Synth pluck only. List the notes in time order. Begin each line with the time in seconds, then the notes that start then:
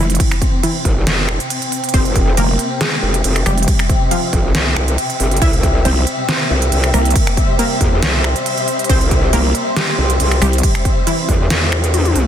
0.00 E3 E4
0.63 E3 E4
1.94 C4 C5
2.37 A#3 A#4
2.81 G#3 G#4
3.46 G3 G4
4.11 F3 F4
5.42 E4 E5
5.85 C4 C5
6.29 C4 C5
6.94 A#3 A#4
7.59 A#3 A#4
8.90 C4 C5
9.33 A#3 A#4
9.76 G3 G4
10.42 G3 G4
11.07 E3 E4